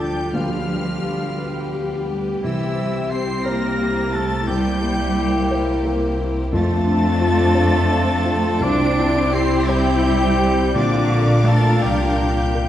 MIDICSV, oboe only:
0, 0, Header, 1, 2, 480
1, 0, Start_track
1, 0, Tempo, 688863
1, 241, Time_signature, 6, 3, 24, 8
1, 5518, Tempo, 708383
1, 7918, Tempo, 733496
1, 8720, End_track
2, 0, Start_track
2, 0, Title_t, "Oboe"
2, 0, Program_c, 0, 68
2, 0, Note_on_c, 0, 67, 80
2, 228, Note_off_c, 0, 67, 0
2, 232, Note_on_c, 0, 65, 86
2, 1426, Note_off_c, 0, 65, 0
2, 1688, Note_on_c, 0, 64, 91
2, 2161, Note_on_c, 0, 72, 100
2, 2172, Note_off_c, 0, 64, 0
2, 2397, Note_off_c, 0, 72, 0
2, 2401, Note_on_c, 0, 70, 115
2, 2887, Note_on_c, 0, 69, 97
2, 2897, Note_off_c, 0, 70, 0
2, 3121, Note_on_c, 0, 67, 107
2, 3131, Note_off_c, 0, 69, 0
2, 4315, Note_off_c, 0, 67, 0
2, 4548, Note_on_c, 0, 69, 127
2, 5998, Note_on_c, 0, 74, 127
2, 6008, Note_off_c, 0, 69, 0
2, 6476, Note_on_c, 0, 72, 111
2, 6487, Note_off_c, 0, 74, 0
2, 6714, Note_on_c, 0, 67, 127
2, 6724, Note_off_c, 0, 72, 0
2, 7424, Note_off_c, 0, 67, 0
2, 7428, Note_on_c, 0, 62, 113
2, 7913, Note_on_c, 0, 69, 116
2, 7923, Note_off_c, 0, 62, 0
2, 8160, Note_on_c, 0, 67, 104
2, 8170, Note_off_c, 0, 69, 0
2, 8720, Note_off_c, 0, 67, 0
2, 8720, End_track
0, 0, End_of_file